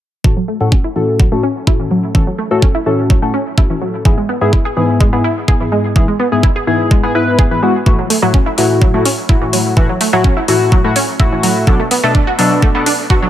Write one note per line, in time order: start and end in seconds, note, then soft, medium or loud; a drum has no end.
0.24 0.35 A2 medium
0.24 0.36 E3 medium
0.24 0.35 C#4 medium
0.24 0.35 F#4 medium
0.24 0.35 A4 medium
0.24 kick loud
0.37 0.45 F#3 medium
0.48 0.57 A3 medium
0.61 0.76 A2 medium
0.61 0.76 C#4 medium
0.61 0.76 F#4 medium
0.61 0.76 A4 loud
0.72 0.84 C#4 medium
0.72 kick loud
0.84 0.89 E4 medium
0.96 1.29 A2 medium
0.96 1.08 E3 medium
0.96 1.29 C#4 medium
0.96 1.29 F#4 medium
0.96 1.29 A4 loud
1.20 1.31 F#3 medium
1.20 kick loud
1.32 1.41 A2 medium
1.32 1.43 A3 medium
1.32 1.41 C#4 medium
1.32 1.41 F#4 medium
1.32 1.41 A4 loud
1.43 1.52 C#4 medium
1.67 2.12 A2 medium
1.67 2.12 C#4 medium
1.67 1.72 E4 medium
1.67 2.12 F#4 medium
1.67 2.12 A4 medium
1.67 kick loud
1.79 1.84 E3 medium
1.91 2.03 F#3 medium
2.15 2.25 A2 medium
2.15 2.27 E3 medium
2.15 2.25 C#4 medium
2.15 2.25 F#4 medium
2.15 2.25 A4 loud
2.15 kick loud
2.27 2.35 F#3 medium
2.38 2.47 A3 medium
2.51 2.66 A2 medium
2.51 2.66 C#4 medium
2.51 2.66 F#4 medium
2.51 2.66 A4 loud
2.62 2.74 C#4 medium
2.62 kick loud
2.75 2.80 E4 medium
2.86 3.20 A2 medium
2.86 2.98 E3 medium
2.86 3.20 C#4 medium
2.86 3.20 F#4 medium
2.86 3.19 A4 medium
3.10 3.22 F#3 medium
3.10 kick loud
3.22 3.32 A2 medium
3.22 3.33 A3 medium
3.22 3.32 C#4 medium
3.22 3.32 F#4 medium
3.22 3.32 A4 loud
3.34 3.42 C#4 medium
3.58 4.03 A2 medium
3.58 4.03 C#4 medium
3.58 3.63 E4 medium
3.58 4.03 F#4 medium
3.58 4.03 A4 medium
3.58 kick loud
3.70 3.75 E3 medium
3.81 3.93 F#3 medium
4.05 4.16 G#2 medium
4.05 4.17 E3 medium
4.05 4.16 B3 medium
4.05 4.15 E4 medium
4.05 4.16 G#4 loud
4.05 kick loud
4.18 4.26 G#3 medium
4.29 4.38 B3 medium
4.41 4.57 G#2 loud
4.41 4.57 B3 medium
4.41 4.57 E4 medium
4.41 4.57 G#4 loud
4.53 4.65 E4 medium
4.53 kick loud
4.65 4.70 G#4 medium
4.77 5.10 G#2 medium
4.77 4.88 E3 medium
4.77 5.10 B3 medium
4.77 5.10 E4 medium
4.77 5.10 G#4 medium
5.00 5.12 G#3 medium
5.00 kick loud
5.13 5.22 G#2 medium
5.13 5.24 B3 medium
5.13 5.22 B3 medium
5.13 5.22 E4 medium
5.13 5.22 G#4 loud
5.24 5.33 E4 medium
5.48 5.93 G#2 medium
5.48 5.93 B3 medium
5.48 5.93 E4 medium
5.48 5.53 G#4 medium
5.48 5.93 G#4 medium
5.48 kick loud
5.60 5.65 E3 medium
5.72 5.84 G#3 medium
5.96 6.06 G#2 medium
5.96 6.08 E3 medium
5.96 6.06 B3 medium
5.96 6.06 E4 medium
5.96 6.06 G#4 loud
5.96 kick loud
6.08 6.16 G#3 medium
6.20 6.28 B3 medium
6.32 6.47 G#2 medium
6.32 6.47 B3 medium
6.32 6.47 E4 medium
6.32 6.47 G#4 loud
6.43 6.55 E4 medium
6.43 kick loud
6.56 6.61 G#4 medium
6.67 7.00 G#2 medium
6.67 6.79 E3 medium
6.67 7.00 B3 medium
6.67 7.00 E4 medium
6.67 7.00 G#4 loud
6.91 7.03 G#3 medium
6.91 kick loud
7.03 7.13 G#2 medium
7.03 7.14 B3 medium
7.03 7.13 B3 medium
7.03 7.13 E4 medium
7.03 7.13 G#4 loud
7.15 7.48 G#2 medium
7.15 7.48 B3 medium
7.15 7.24 E4 medium
7.15 7.48 E4 medium
7.15 7.48 B4 loud
7.39 7.44 G#4 medium
7.39 kick loud
7.51 7.60 G#2 medium
7.51 7.56 E3 medium
7.51 7.60 B3 medium
7.51 7.60 E4 medium
7.51 7.60 B4 medium
7.63 7.74 G#3 medium
7.63 7.73 B3 loud
7.63 7.73 E4 medium
7.63 7.73 F#4 loud
7.86 7.97 A2 medium
7.86 7.98 E3 medium
7.86 7.97 A3 medium
7.86 7.97 E4 medium
7.86 7.97 F#4 loud
7.86 kick loud
7.99 8.07 F#3 medium
8.10 8.19 A3 medium
8.10 open hi-hat loud
8.22 8.38 A2 loud
8.22 8.33 F#3 loud
8.22 8.38 A3 medium
8.22 8.38 E4 medium
8.22 8.38 F#4 loud
8.34 8.46 C#4 medium
8.34 kick loud
8.46 8.51 E4 medium
8.58 8.91 A2 medium
8.58 8.69 E3 medium
8.58 8.91 A3 medium
8.58 8.91 E4 medium
8.58 8.91 F#4 medium
8.58 open hi-hat medium
8.82 8.93 F#3 medium
8.82 kick loud
8.94 9.03 A2 medium
8.94 9.05 A3 medium
8.94 9.03 A3 medium
8.94 9.03 E4 medium
8.94 9.03 F#4 loud
9.05 9.14 C#4 medium
9.05 open hi-hat loud
9.29 9.74 A2 medium
9.29 9.74 A3 medium
9.29 9.34 E4 medium
9.29 9.74 E4 medium
9.29 9.74 F#4 medium
9.29 kick loud
9.42 9.46 E3 medium
9.53 9.65 F#3 medium
9.53 open hi-hat medium
9.77 9.87 A2 medium
9.77 9.89 E3 medium
9.77 9.87 A3 medium
9.77 9.87 E4 medium
9.77 9.87 F#4 loud
9.77 kick loud
9.89 9.97 F#3 medium
10.01 10.09 A3 medium
10.01 open hi-hat loud
10.13 10.28 A2 medium
10.13 10.24 F#3 loud
10.13 10.28 A3 medium
10.13 10.28 E4 medium
10.13 10.28 F#4 loud
10.24 10.36 C#4 medium
10.24 kick loud
10.37 10.42 E4 medium
10.48 10.81 A2 medium
10.48 10.60 E3 medium
10.48 10.81 A3 medium
10.48 10.81 E4 medium
10.48 10.81 F#4 loud
10.48 open hi-hat medium
10.72 10.84 F#3 medium
10.72 kick loud
10.84 10.94 A2 medium
10.84 10.94 A3 medium
10.84 10.95 A3 medium
10.84 10.94 E4 medium
10.84 10.94 F#4 loud
10.96 11.05 C#4 medium
10.96 open hi-hat loud
11.20 11.65 A2 medium
11.20 11.65 A3 medium
11.20 11.65 E4 medium
11.20 11.25 E4 medium
11.20 11.65 F#4 medium
11.20 kick loud
11.32 11.37 E3 medium
11.43 11.55 F#3 medium
11.43 open hi-hat medium
11.67 11.77 B2 medium
11.67 11.79 F#3 medium
11.67 11.77 B3 medium
11.67 11.77 D4 medium
11.67 11.77 A4 loud
11.67 kick loud
11.80 11.88 A3 medium
11.91 12.00 B3 medium
11.91 open hi-hat medium
12.03 12.19 B2 medium
12.03 12.14 A3 loud
12.03 12.19 B3 medium
12.03 12.19 D4 medium
12.03 12.19 A4 loud
12.15 12.27 D4 medium
12.15 kick loud
12.27 12.32 F#4 medium
12.39 12.72 B2 medium
12.39 12.50 F#3 medium
12.39 12.72 B3 medium
12.39 12.72 D4 medium
12.39 12.72 A4 medium
12.39 open hi-hat medium
12.62 12.74 A3 medium
12.62 kick loud
12.75 12.84 B2 medium
12.75 12.86 B3 medium
12.75 12.84 B3 medium
12.75 12.84 D4 medium
12.75 12.84 A4 loud
12.86 12.95 D4 medium
12.86 open hi-hat loud
13.10 13.30 B2 medium
13.10 13.30 B3 medium
13.10 13.30 D4 medium
13.10 13.15 F#4 medium
13.10 13.30 A4 medium
13.10 kick loud
13.22 13.27 F#3 medium